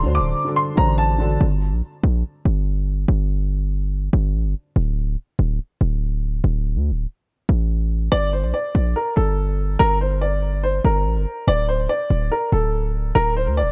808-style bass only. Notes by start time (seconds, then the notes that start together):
0.04 D2
0.20 D1
0.78 A1
1.41 G1
1.72 A#1
2.03 A#1
2.45 G1
3.08 G1
4.13 G1
4.34 A1
4.44 G1
4.76 D1
5.39 D1
5.81 D1
6.44 D1
6.75 D2
6.91 D1
7.49 A1
8.12 G1
8.43 A#1
8.75 A#1
9.17 G1
9.80 G1
10.85 G1
11.06 A1
11.16 G1
11.48 D1
12.10 D1
12.52 D1
13.15 D1
13.47 D2
13.63 D1